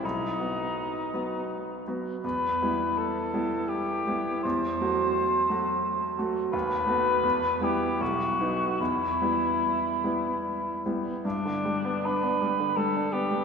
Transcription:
X:1
M:3/4
L:1/16
Q:1/4=82
K:Em
V:1 name="Cor anglais"
^D8- D2 z2 | B4 A4 G4 | c8- c2 z2 | B6 G2 F4 |
E8- E2 z2 | [K:G] D4 B4 A2 G2 |]
V:2 name="Grand piano"
B,,,2 [F,B,F]4 [F,B,F]4 [F,B,F]2 | E,,2 [G,B,E]4 [G,B,E]4 [G,B,E]2 | E,,2 [F,A,F]4 [F,A,F]4 [F,A,F]2 | ^D,,2 [A,B,F]2 E,,2 [G,B,E]2 B,,,2 [F,B,^D]2 |
E,,2 [G,B,E]4 [G,B,E]4 [G,B,E]2 | [K:G] G,, D, G, B, D B, G, D, G, D B, G, |]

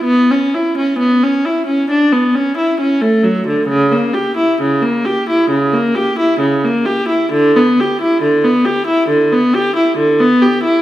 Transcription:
X:1
M:4/4
L:1/16
Q:1/4=67
K:Bm
V:1 name="Viola"
B, C E C B, C E C D B, C E C A, F, D, | C, ^A, G E C, A, G E C, A, G E C, A, G E | D, B, G E D, B, G E D, B, G E D, B, G E |]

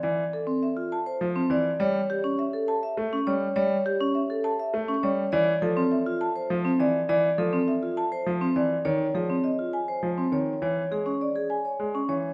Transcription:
X:1
M:3/4
L:1/16
Q:1/4=102
K:F
V:1 name="Marimba"
d z A z e z a z3 d z | ^c z G z e z a z3 c z | ^c z G z e z a z3 c z | d z A z e z a z3 d z |
d z A z e z a z3 d z | ^c z ^G z _e z ^g z3 c z | ^c z ^G z d z ^g z3 c z |]
V:2 name="Vibraphone"
z3 C z F z c z C z2 | z3 ^C z A z e z C z2 | z3 ^C z A z e z C z2 | z3 C z F z c z C z2 |
z3 C z F z c z C z2 | z3 ^B, z ^E z ^B z B, z2 | z3 ^C z ^G z ^c z C z2 |]
V:3 name="Grand piano" clef=bass
E, z6 z F, z E, z | G, z6 z A, z G, z | G, z6 z A, z G, z | E, z F, z4 z F, z E, z |
E, z F, z4 z F, z E, z | _E, z ^E, z4 z E, z _E, z | E, z ^G, z4 z G, z E, z |]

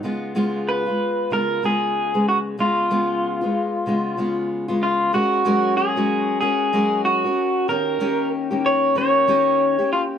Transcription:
X:1
M:4/4
L:1/16
Q:"Swing 16ths" 1/4=94
K:F#
V:1 name="Clean electric guitar"
z4 B4 A2 G4 F2 | E12 z2 E2 | F4 G4 G4 F4 | A4 z2 c2 c6 E2 |]
V:2 name="Steel-string acoustic guitar"
[C,G,B,E]2 [C,G,B,E]3 [G,B,E]3 [C,G,B,E]2 [C,G,B,E]3 [C,G,B,]3 | [C,G,B,E]2 [C,G,B,E]3 [G,B,E]3 [C,G,B,E]2 [C,G,B,E]3 [C,G,B,E]3 | [G,CFA]2 [F,G,CFA]3 [F,G,CFA]3 [G,CFA]2 [F,G,CFA]3 [CFA]3 | [D,A,C=G]2 [D,A,CG]3 [D,A,CG]3 [D,A,CG]2 [D,A,CG]3 [A,CG]3 |]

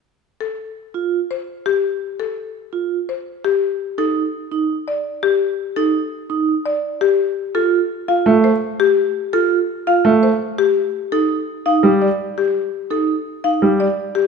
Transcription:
X:1
M:5/4
L:1/8
Q:1/4=168
K:Fmix
V:1 name="Marimba"
z2 A z4 c z G | z2 A z4 c z G | z2 A z4 d z G | z2 A z4 d z G |
z2 A z2 f z c z G | z2 A z2 f z c z G | z2 A z2 f z d z G | z2 A z2 f z d z G |]
V:2 name="Vibraphone"
z4 z F z4 | z4 z F z4 | z2 E z2 E z4 | z2 E z2 E z4 |
z2 F z2 F z4 | z2 F z2 F z4 | z2 E z2 E z4 | z2 E z2 E z4 |]
V:3 name="Grand piano" clef=bass
z8 z2 | z8 z2 | z8 z2 | z8 z2 |
z6 A, z3 | z6 A, z3 | z6 G, z3 | z6 G, z3 |]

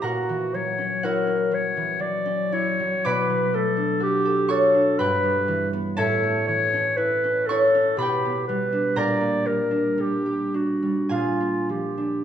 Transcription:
X:1
M:3/4
L:1/16
Q:1/4=60
K:Glyd
V:1 name="Clarinet"
F2 c2 ^A2 c2 d2 c2 | B2 A2 G2 A2 B2 z2 | c2 c2 B2 A2 G2 B2 | d2 _B2 G2 F2 =F2 G2 |]
V:2 name="Harp"
[^Acef^ab]4 [Fcf]8 | [dbd']6 [cc']2 [Bgb]4 | [Aea]6 [cc']2 [Bgb]4 | [_Bg_b]8 [_A=f_a]4 |]
V:3 name="Harp"
[^A,,CE] E, F, C E C F, E, F, C E F, | B,, F, A, D F A F D G,, G, E, B, | A,, A, E, C E C E C B,, B, G, D | _B,, _B, G, D G, G D G, B,, B, =F, D |]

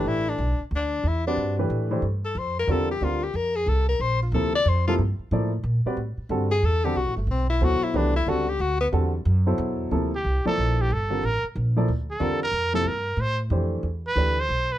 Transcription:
X:1
M:3/4
L:1/8
Q:"Swing" 1/4=183
K:Gdor
V:1 name="Trumpet"
z6 | z6 | z6 | z6 |
z6 | z6 | z6 | z6 |
z6 | z6 | z G2 A2 G | A2 B z3 |
z A2 B2 A | B2 c z3 | z =B2 c2 B |]
V:2 name="Tenor saxophone"
E D2 z D2 | E D2 z3 | z A c B A G | F G B _A =A B |
c F A d c F | z6 | z3 _A =A G | ^F A, C E F E |
D E ^F G F =B, | z6 | z6 | z6 |
z6 | z6 | z6 |]
V:3 name="Grand piano"
[E,A,DG=B]2 z4 | z [G,C^F=Bd]2 [E,A,DGB]2 [E,A,DGc] | z4 [D,G,CFB] z | [D,G,CFB] z4 z |
z2 [C,F,B,EA] z2 [C,F,B,EA] | z2 [F,B,EAd] z2 [G,C^F=Bd] | z2 [D,G,C^FA] z2 [D,G,CFA] | z4 [=B,,^F,EAc]2 |
[E,A,DG=B] z [D,G,C^FA] z3 | [D,G,C^FA] z2 [=B,,^F,EAc]3 | [C,F,B,EA] z2 [F,B,EAd]3 | z [D,G,CFB] z3 [F,B,EAd] |
z2 [D,G,CFB] z2 [C,F,B,EA] | z4 [E,A,DGc]2 | z2 [E,A,DG=B] z3 |]
V:4 name="Upright bass" clef=bass
A,,,2 =B,,, z D,,2 | E,,2 G,,2 A,,2 | G,,2 F,,2 E,,2 | D,,2 F,,2 C,,2 |
B,,,2 D,,2 F,,2 | G,, z A,,2 B,, z | A,, z G,,2 E,,2 | (3C,, A,,, G,,, =B,,,2 D,, z |
C,,2 ^C,,2 D,,2 | E,,2 ^F,,2 E,,2 | D,,2 C,, z B,,,2 | G,,,2 A,,, z B,,,2 |
D,,2 E,,2 F,,2 | G,,2 A,,2 F,,2 | E,,2 D,,2 =B,,,2 |]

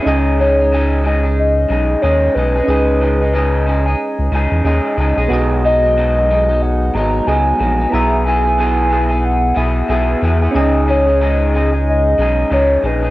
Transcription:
X:1
M:4/4
L:1/16
Q:"Swing 16ths" 1/4=92
K:C#dor
V:1 name="Soft synth lead"
z2 c4 z2 d4 c2 B2- | B8- B2 z6 | z2 d6 f2 a2 g4 | a2 g6 f2 e4 z2 |
z2 c4 z2 d4 c2 B2 |]
V:2 name="Synth keys"
[CDGd]16 | [CDGd]12 [CDGd]4 | [B,FGd]12 [B,FGd]4 | [B,EGe]12 [B,EGe]4 |
[CDGd]16 |]
V:3 name="Clean electric guitar"
[C,G,DG]2 [C,G,DG] [G,DG] [C,G,DG]2 [C,G,DG] [G,DG]3 [C,G,DG]2 [C,G,DG]2 [C,G,DG] [G,DG] | [C,G,DG]2 [C,G,DG] [G,DG] [C,G,DG]2 [C,G,DG] [G,DG]3 [C,G,DG]2 [C,G,DG]2 [C,G,DG] [G,DG] | [B,,F,G,D]2 [B,,F,G,D] [F,G,D] [B,,F,G,D]2 [B,,F,G,D] [F,G,D]3 [B,,F,G,D]2 [B,,F,G,D]2 [B,,F,G,D] [F,G,D] | [B,,B,EG]2 [B,,B,EG] [B,EG] [B,,B,EG]2 [B,,B,EG] [B,EG]3 [B,,B,EG]2 [B,,B,EG]2 [B,,B,EG] [B,EG] |
[C,G,DG]2 [C,G,DG] [G,DG] [C,G,DG]2 [C,G,DG] [G,DG]3 [C,G,DG]2 [C,G,DG]2 [C,G,DG] [G,DG] |]
V:4 name="Analog synth bass" clef=bass
C,,8- C,,2 B,,,2 D,,2 B,,,2 | C,,8 z C,, C,, E,, D,, z C,, B,,, | B,,,8- B,,,2 G,,,2 C,,2 A,,,2 | B,,,8- B,,,2 B,,,2 B,,,2 E,,2 |
C,,8- C,,2 B,,,2 C,,2 A,,,2 |]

